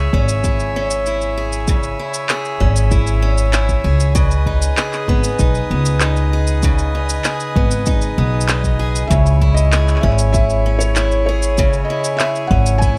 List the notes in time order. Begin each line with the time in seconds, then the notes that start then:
Already playing: C#3 E4 G#4 C#5 E5 G#5 E6
0.13 G#1 C#4, kick
0.29 shaker
0.44 E4, kick, shaker
0.60 shaker
0.76 C#4
0.90 shaker
1.06 E4, shaker
1.21 shaker
1.38 G#4
1.53 shaker
1.67 C#3, kick, shaker
1.83 shaker
1.99 E4
2.14 shaker
2.29 G#4, clap, shaker
2.45 shaker
2.60 G#1 C#4, kick
2.76 shaker
2.91 E4, kick, shaker
3.07 shaker
3.22 C#4
3.38 shaker
3.53 E4, clap, shaker
3.69 kick, shaker
3.84 C#2 G#4
4.00 shaker
4.15 C#3 B4 D#5 D#6, kick, shaker
4.31 shaker
4.46 D#4, kick
4.62 shaker
4.77 G#4, clap, shaker
4.93 clap, shaker
5.08 G#1 B3, kick
5.24 shaker
5.39 B1 D#4, kick, shaker
5.55 shaker
5.71 C#2 B3
5.86 shaker
6.00 D#4, clap, shaker
6.16 shaker
6.33 G#4
6.47 shaker
6.63 C#3, kick, shaker
6.79 shaker
6.95 D#4
7.09 shaker
7.24 G#4, clap, shaker
7.40 shaker
7.56 G#1 B3, kick
7.71 shaker
7.86 D#4, kick, shaker
8.02 shaker
8.18 B1 B3
8.41 shaker
8.48 D#4, clap, shaker
8.64 kick, shaker
8.79 G#4
8.96 shaker
9.07 C#2 C#3 E4 C#5 E5, kick, shaker
9.26 shaker
9.41 E4, kick
9.54 D#5, shaker
9.72 G#4, clap, shaker
9.88 clap, shaker
9.96 clap
10.01 G#1 C#4 E5, kick, clap
10.11 clap
10.19 shaker
10.33 E4 E5, kick, shaker
10.50 shaker
10.66 C#4
10.79 C#5, shaker
10.96 E4, clap, shaker
11.12 shaker
11.26 G#4 C#5
11.42 shaker
11.58 C#3, kick, shaker
11.73 shaker
11.85 D#5
11.90 E4
12.04 shaker
12.17 G#4 E5, clap, shaker
12.35 shaker
12.47 G#1 C#4 F#5, kick
12.66 shaker
12.78 E4 G#5, kick, shaker